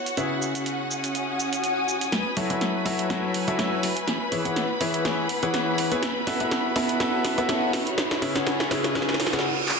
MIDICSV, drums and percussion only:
0, 0, Header, 1, 2, 480
1, 0, Start_track
1, 0, Tempo, 487805
1, 170, Time_signature, 4, 2, 24, 8
1, 9641, End_track
2, 0, Start_track
2, 0, Title_t, "Drums"
2, 63, Note_on_c, 9, 42, 64
2, 68, Note_on_c, 9, 82, 43
2, 161, Note_off_c, 9, 42, 0
2, 167, Note_off_c, 9, 82, 0
2, 170, Note_on_c, 9, 42, 55
2, 175, Note_on_c, 9, 82, 33
2, 268, Note_off_c, 9, 42, 0
2, 274, Note_off_c, 9, 82, 0
2, 416, Note_on_c, 9, 82, 78
2, 514, Note_off_c, 9, 82, 0
2, 542, Note_on_c, 9, 42, 68
2, 547, Note_on_c, 9, 82, 44
2, 640, Note_off_c, 9, 42, 0
2, 646, Note_off_c, 9, 82, 0
2, 650, Note_on_c, 9, 42, 51
2, 656, Note_on_c, 9, 82, 33
2, 749, Note_off_c, 9, 42, 0
2, 754, Note_off_c, 9, 82, 0
2, 895, Note_on_c, 9, 82, 75
2, 994, Note_off_c, 9, 82, 0
2, 1022, Note_on_c, 9, 42, 63
2, 1027, Note_on_c, 9, 82, 42
2, 1120, Note_off_c, 9, 42, 0
2, 1126, Note_off_c, 9, 82, 0
2, 1131, Note_on_c, 9, 42, 52
2, 1136, Note_on_c, 9, 82, 32
2, 1229, Note_off_c, 9, 42, 0
2, 1235, Note_off_c, 9, 82, 0
2, 1375, Note_on_c, 9, 82, 80
2, 1474, Note_off_c, 9, 82, 0
2, 1502, Note_on_c, 9, 42, 64
2, 1507, Note_on_c, 9, 82, 43
2, 1600, Note_off_c, 9, 42, 0
2, 1606, Note_off_c, 9, 82, 0
2, 1610, Note_on_c, 9, 42, 53
2, 1615, Note_on_c, 9, 82, 31
2, 1708, Note_off_c, 9, 42, 0
2, 1714, Note_off_c, 9, 82, 0
2, 1855, Note_on_c, 9, 82, 76
2, 1954, Note_off_c, 9, 82, 0
2, 1981, Note_on_c, 9, 42, 65
2, 1987, Note_on_c, 9, 82, 42
2, 2080, Note_off_c, 9, 42, 0
2, 2085, Note_off_c, 9, 82, 0
2, 2090, Note_on_c, 9, 38, 49
2, 2090, Note_on_c, 9, 42, 52
2, 2188, Note_off_c, 9, 38, 0
2, 2188, Note_off_c, 9, 42, 0
2, 2329, Note_on_c, 9, 46, 101
2, 2428, Note_off_c, 9, 46, 0
2, 2461, Note_on_c, 9, 42, 68
2, 2559, Note_off_c, 9, 42, 0
2, 2571, Note_on_c, 9, 38, 48
2, 2571, Note_on_c, 9, 42, 50
2, 2669, Note_off_c, 9, 38, 0
2, 2669, Note_off_c, 9, 42, 0
2, 2811, Note_on_c, 9, 46, 89
2, 2909, Note_off_c, 9, 46, 0
2, 2943, Note_on_c, 9, 42, 64
2, 3041, Note_off_c, 9, 42, 0
2, 3051, Note_on_c, 9, 38, 51
2, 3051, Note_on_c, 9, 42, 54
2, 3149, Note_off_c, 9, 38, 0
2, 3149, Note_off_c, 9, 42, 0
2, 3290, Note_on_c, 9, 46, 106
2, 3389, Note_off_c, 9, 46, 0
2, 3423, Note_on_c, 9, 42, 63
2, 3521, Note_off_c, 9, 42, 0
2, 3532, Note_on_c, 9, 38, 54
2, 3532, Note_on_c, 9, 42, 53
2, 3630, Note_off_c, 9, 38, 0
2, 3630, Note_off_c, 9, 42, 0
2, 3771, Note_on_c, 9, 46, 87
2, 3869, Note_off_c, 9, 46, 0
2, 3903, Note_on_c, 9, 42, 66
2, 4001, Note_off_c, 9, 42, 0
2, 4010, Note_on_c, 9, 38, 57
2, 4010, Note_on_c, 9, 42, 52
2, 4109, Note_off_c, 9, 38, 0
2, 4109, Note_off_c, 9, 42, 0
2, 4250, Note_on_c, 9, 46, 106
2, 4348, Note_off_c, 9, 46, 0
2, 4382, Note_on_c, 9, 42, 66
2, 4481, Note_off_c, 9, 42, 0
2, 4490, Note_on_c, 9, 38, 61
2, 4490, Note_on_c, 9, 42, 50
2, 4589, Note_off_c, 9, 38, 0
2, 4589, Note_off_c, 9, 42, 0
2, 4729, Note_on_c, 9, 46, 93
2, 4828, Note_off_c, 9, 46, 0
2, 4862, Note_on_c, 9, 42, 65
2, 4960, Note_off_c, 9, 42, 0
2, 4970, Note_on_c, 9, 38, 64
2, 4970, Note_on_c, 9, 42, 53
2, 5068, Note_off_c, 9, 38, 0
2, 5068, Note_off_c, 9, 42, 0
2, 5208, Note_on_c, 9, 46, 107
2, 5307, Note_off_c, 9, 46, 0
2, 5340, Note_on_c, 9, 42, 64
2, 5439, Note_off_c, 9, 42, 0
2, 5449, Note_on_c, 9, 38, 68
2, 5449, Note_on_c, 9, 42, 51
2, 5548, Note_off_c, 9, 38, 0
2, 5548, Note_off_c, 9, 42, 0
2, 5689, Note_on_c, 9, 46, 90
2, 5787, Note_off_c, 9, 46, 0
2, 5821, Note_on_c, 9, 42, 64
2, 5920, Note_off_c, 9, 42, 0
2, 5929, Note_on_c, 9, 38, 74
2, 5929, Note_on_c, 9, 42, 49
2, 6028, Note_off_c, 9, 38, 0
2, 6028, Note_off_c, 9, 42, 0
2, 6170, Note_on_c, 9, 38, 73
2, 6170, Note_on_c, 9, 46, 112
2, 6268, Note_off_c, 9, 38, 0
2, 6268, Note_off_c, 9, 46, 0
2, 6301, Note_on_c, 9, 42, 62
2, 6399, Note_off_c, 9, 42, 0
2, 6410, Note_on_c, 9, 38, 78
2, 6410, Note_on_c, 9, 42, 51
2, 6508, Note_off_c, 9, 38, 0
2, 6508, Note_off_c, 9, 42, 0
2, 6649, Note_on_c, 9, 38, 78
2, 6649, Note_on_c, 9, 46, 93
2, 6748, Note_off_c, 9, 38, 0
2, 6748, Note_off_c, 9, 46, 0
2, 6782, Note_on_c, 9, 42, 62
2, 6880, Note_off_c, 9, 42, 0
2, 6889, Note_on_c, 9, 38, 81
2, 6889, Note_on_c, 9, 42, 51
2, 6988, Note_off_c, 9, 38, 0
2, 6988, Note_off_c, 9, 42, 0
2, 7129, Note_on_c, 9, 38, 83
2, 7129, Note_on_c, 9, 46, 110
2, 7228, Note_off_c, 9, 38, 0
2, 7228, Note_off_c, 9, 46, 0
2, 7261, Note_on_c, 9, 42, 64
2, 7360, Note_off_c, 9, 42, 0
2, 7369, Note_on_c, 9, 38, 88
2, 7369, Note_on_c, 9, 42, 50
2, 7467, Note_off_c, 9, 38, 0
2, 7467, Note_off_c, 9, 42, 0
2, 7610, Note_on_c, 9, 38, 89
2, 7610, Note_on_c, 9, 46, 96
2, 7708, Note_off_c, 9, 38, 0
2, 7708, Note_off_c, 9, 46, 0
2, 7742, Note_on_c, 9, 42, 60
2, 7841, Note_off_c, 9, 42, 0
2, 7850, Note_on_c, 9, 38, 92
2, 7850, Note_on_c, 9, 42, 50
2, 7949, Note_off_c, 9, 38, 0
2, 7949, Note_off_c, 9, 42, 0
2, 7982, Note_on_c, 9, 38, 81
2, 8080, Note_off_c, 9, 38, 0
2, 8090, Note_on_c, 9, 38, 94
2, 8090, Note_on_c, 9, 46, 110
2, 8188, Note_off_c, 9, 38, 0
2, 8188, Note_off_c, 9, 46, 0
2, 8222, Note_on_c, 9, 38, 85
2, 8222, Note_on_c, 9, 42, 63
2, 8320, Note_off_c, 9, 38, 0
2, 8320, Note_off_c, 9, 42, 0
2, 8330, Note_on_c, 9, 38, 97
2, 8330, Note_on_c, 9, 42, 50
2, 8429, Note_off_c, 9, 38, 0
2, 8429, Note_off_c, 9, 42, 0
2, 8463, Note_on_c, 9, 38, 84
2, 8562, Note_off_c, 9, 38, 0
2, 8571, Note_on_c, 9, 38, 100
2, 8571, Note_on_c, 9, 46, 95
2, 8669, Note_off_c, 9, 38, 0
2, 8669, Note_off_c, 9, 46, 0
2, 8702, Note_on_c, 9, 38, 88
2, 8702, Note_on_c, 9, 42, 61
2, 8800, Note_off_c, 9, 38, 0
2, 8800, Note_off_c, 9, 42, 0
2, 8810, Note_on_c, 9, 38, 101
2, 8810, Note_on_c, 9, 42, 51
2, 8876, Note_off_c, 9, 38, 0
2, 8876, Note_on_c, 9, 38, 93
2, 8909, Note_off_c, 9, 42, 0
2, 8942, Note_off_c, 9, 38, 0
2, 8942, Note_on_c, 9, 38, 91
2, 8997, Note_off_c, 9, 38, 0
2, 8997, Note_on_c, 9, 38, 93
2, 9050, Note_off_c, 9, 38, 0
2, 9050, Note_on_c, 9, 38, 101
2, 9050, Note_on_c, 9, 46, 114
2, 9117, Note_off_c, 9, 38, 0
2, 9117, Note_on_c, 9, 38, 91
2, 9148, Note_off_c, 9, 46, 0
2, 9183, Note_off_c, 9, 38, 0
2, 9183, Note_on_c, 9, 38, 92
2, 9183, Note_on_c, 9, 42, 62
2, 9238, Note_off_c, 9, 38, 0
2, 9238, Note_on_c, 9, 38, 94
2, 9282, Note_off_c, 9, 42, 0
2, 9336, Note_off_c, 9, 38, 0
2, 9531, Note_on_c, 9, 39, 85
2, 9630, Note_off_c, 9, 39, 0
2, 9641, End_track
0, 0, End_of_file